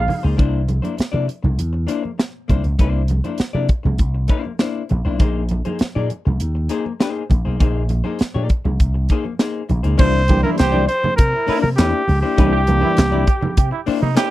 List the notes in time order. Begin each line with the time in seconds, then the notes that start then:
Already playing: F5
0.08 muted hollow-body jazz guitar stroke, open hi-hat, high conga, low conga
0.23 C#2 A#3 D#4 G#4 C5
0.37 C2 A#3 D4 E4 C5, kick, closed hi-hat, low conga
0.68 muted hollow-body jazz guitar stroke, closed hi-hat, muted conga, high conga
0.82 A#3 D4 E4 C5, closed hi-hat, high conga
0.97 muted hollow-body jazz guitar stroke, muted slap bass stroke, snare, closed hi-hat, muted conga
1.12 C3 A#3 D4 E4 D5, high conga
1.27 muted hollow-body jazz guitar stroke, closed hi-hat
1.43 C2, muted hollow-body jazz guitar stroke, high conga, low conga
1.58 E2, closed hi-hat, muted conga
1.73 muted hollow-body jazz guitar stroke
1.87 A#3 D4 E4 C5, closed hi-hat, muted conga
2.03 muted hollow-body jazz guitar stroke, high conga
2.18 muted hollow-body jazz guitar stroke, snare, closed hi-hat
2.48 C2 A#3 D4 E4 C5, kick, closed hi-hat, high conga, low conga
2.64 C#2, muted hollow-body jazz guitar stroke, closed hi-hat
2.79 C2 A#3 D4 E4 C5, kick, closed hi-hat, low conga
3.08 muted hollow-body jazz guitar stroke, closed hi-hat, muted conga, high conga
3.24 A#3 D4 E4 C5, closed hi-hat, high conga
3.38 muted slap bass stroke, muted hollow-body jazz guitar stroke, snare, closed hi-hat
3.53 C3 A#3 D4 E4 D5, high conga
3.69 muted hollow-body jazz guitar stroke, kick, closed hi-hat, muted conga
3.83 C2, muted hollow-body jazz guitar stroke, high conga, low conga
3.98 C2, kick, closed hi-hat, muted conga
4.14 muted hollow-body jazz guitar stroke
4.28 A#3 D4 E4 C5, kick, closed hi-hat, muted conga
4.44 muted hollow-body jazz guitar stroke, high conga
4.59 A#3 D4 E4 C5, snare, closed hi-hat, muted conga
4.89 A#1, muted hollow-body jazz guitar stroke, closed hi-hat, muted conga, high conga, low conga
5.05 B1 A#3 D4 E4 C5
5.19 A#1 A#3 D#4 G#4 C5, kick, closed hi-hat, low conga
5.49 muted hollow-body jazz guitar stroke, closed hi-hat, muted conga, high conga
5.65 A#3 D#4 G#4 C5, closed hi-hat, high conga
5.79 muted hollow-body jazz guitar stroke, muted slap bass stroke, snare, closed hi-hat
5.95 A#2 A#3 D#4 G#4 D5, high conga
6.10 muted hollow-body jazz guitar stroke, closed hi-hat, muted conga
6.25 C2, muted hollow-body jazz guitar stroke, high conga, low conga
6.40 D#2, closed hi-hat, muted conga
6.55 muted hollow-body jazz guitar stroke
6.69 A#3 D#4 G#4 C5, closed hi-hat, muted conga
6.85 muted hollow-body jazz guitar stroke, high conga
7.00 A#3 D#4 G#4 C5, snare, closed hi-hat
7.30 A#1, muted hollow-body jazz guitar stroke, kick, closed hi-hat, muted conga, high conga, low conga
7.45 B1 A#3 D#4 G#4 C5
7.59 A#1 A#3 D#4 G#4 C5, kick, closed hi-hat, muted conga, low conga
7.89 muted hollow-body jazz guitar stroke, closed hi-hat, high conga
8.04 A#3 D#4 G#4 C5, high conga
8.19 muted hollow-body jazz guitar stroke, muted slap bass stroke, snare, closed hi-hat
8.34 A#2 A#3 D#4 G#4 D5, high conga
8.49 muted hollow-body jazz guitar stroke, kick, closed hi-hat, muted conga
8.65 C2, muted hollow-body jazz guitar stroke, high conga, low conga
8.80 C2, kick, closed hi-hat
8.94 muted hollow-body jazz guitar stroke
9.09 A#3 D#4 G#4 C5, kick, closed hi-hat, muted conga
9.25 muted hollow-body jazz guitar stroke, high conga
9.39 A#3 D#4 G#4 C5, snare, closed hi-hat
9.69 A#1, muted hollow-body jazz guitar stroke, closed hi-hat, high conga, low conga
9.83 C#2 A#3 D#4 G#4 C5, closed hi-hat
9.97 C2 E3 G3 A#3 D4 E4 C5, kick, crash, low conga
10.28 C2 E3 G3 A#3 D4 G4, muted hollow-body jazz guitar stroke, kick, closed hi-hat, muted conga, high conga
10.43 A#3 D4 E4 A#4 C5, high conga
10.57 C2 G4 C5, muted hollow-body jazz guitar stroke, snare, clap, closed hi-hat
10.72 A#3 D4 E4 D5, high conga
10.88 C5, muted hollow-body jazz guitar stroke, closed hi-hat
11.02 muted hollow-body jazz guitar stroke, high conga, low conga
11.17 C3 A#4, kick, closed hi-hat
11.32 E4, muted hollow-body jazz guitar stroke
11.47 A#3 D4 E4 C5, muted slap bass stroke, open hi-hat, muted conga
11.62 C3 A#4, muted hollow-body jazz guitar stroke, high conga
11.77 E2 A#3 D4 E4 G4 C5, snare, clap, closed hi-hat, muted conga
12.08 C#2, muted hollow-body jazz guitar stroke, open hi-hat, muted conga, high conga
12.21 A#3 D4 E4 G4 C5
12.37 C2 E3 G3 A#3 D4 E4 C5, kick, closed hi-hat, low conga
12.53 G4
12.67 C2 E3 G3 A#3 D4, muted hollow-body jazz guitar stroke, closed hi-hat, high conga
12.81 A#3 D4 E4 C5, high conga
12.97 C2, muted hollow-body jazz guitar stroke, snare, clap, closed hi-hat, muted conga
13.11 A#3 D4 E4 D5, high conga
13.27 G4, muted hollow-body jazz guitar stroke, kick, closed hi-hat, muted conga
13.41 muted hollow-body jazz guitar stroke, high conga, low conga
13.57 C3 G4, kick, closed hi-hat
13.71 E4, muted hollow-body jazz guitar stroke
13.86 A#3 D4 E4 C5, muted slap bass stroke, open hi-hat, muted conga
14.01 C3 D#4, muted hollow-body jazz guitar stroke, high conga
14.15 A#3 D4 E4 G4 C5, snare, clap, closed hi-hat